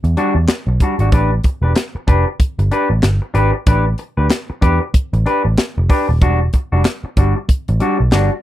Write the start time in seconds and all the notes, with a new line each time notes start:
0.04 E2, muted clean electric guitar stroke, closed hi-hat
0.17 G3 D4 F#4, closed hi-hat
0.35 E2, muted clean electric guitar stroke
0.48 muted picked electric bass stroke, muted clean electric guitar stroke, snare, clap, closed hi-hat
0.67 B1, muted clean electric guitar stroke
0.80 G3 D4 F#4, kick, closed hi-hat
0.99 G#1 G3 D4 F#4, closed hi-hat
1.12 A1 D4 G4 B4, kick, closed hi-hat
1.44 muted clean electric guitar stroke, kick, closed hi-hat
1.62 E1 D4 G4 B4
1.76 snare, clap, closed hi-hat
1.95 muted picked electric bass stroke, muted clean electric guitar stroke
2.07 F1 D4 G4 B4, kick, closed hi-hat
2.28 muted clean electric guitar stroke
2.39 muted picked electric bass stroke, kick, closed hi-hat
2.59 G1, muted clean electric guitar stroke, closed hi-hat
2.71 D4 G4 B4, closed hi-hat
2.90 A1, muted clean electric guitar stroke
3.03 G1, muted clean electric guitar stroke, snare, clap, closed hi-hat
3.22 muted clean electric guitar stroke
3.34 G#1 D4 G4 B4, closed hi-hat
3.53 muted clean electric guitar stroke
3.67 A1 D4 G4 B4, kick, closed hi-hat
3.98 muted clean electric guitar stroke, closed hi-hat
4.17 D2 D4 G4 B4
4.30 snare, clap, closed hi-hat
4.50 muted clean electric guitar stroke, muted picked electric bass stroke
4.61 E2 D4 G4 B4, kick, closed hi-hat
4.94 muted picked electric bass stroke, kick, closed hi-hat
5.13 A1, muted clean electric guitar stroke, closed hi-hat
5.26 D4 G4 B4, closed hi-hat
5.45 A1, muted clean electric guitar stroke
5.58 muted clean electric guitar stroke, snare, clap, closed hi-hat
5.78 F1, muted clean electric guitar stroke
5.89 D4 G4 B4, kick, open hi-hat
6.09 D#1, muted clean electric guitar stroke
6.21 E1 G3 D4 F#4, kick, closed hi-hat
6.53 muted clean electric guitar stroke, kick, closed hi-hat
6.72 F1 G3 D4 F#4
6.85 snare, clap, closed hi-hat
7.04 muted picked electric bass stroke, muted clean electric guitar stroke
7.17 G1 G3 D4 F#4, kick, closed hi-hat
7.37 muted clean electric guitar stroke
7.49 muted picked electric bass stroke, kick, closed hi-hat
7.68 A1, muted clean electric guitar stroke, closed hi-hat
7.80 G3 D4 F#4, closed hi-hat
8.00 B1, muted clean electric guitar stroke
8.12 G1 G3 D4 F#4, snare, clap, closed hi-hat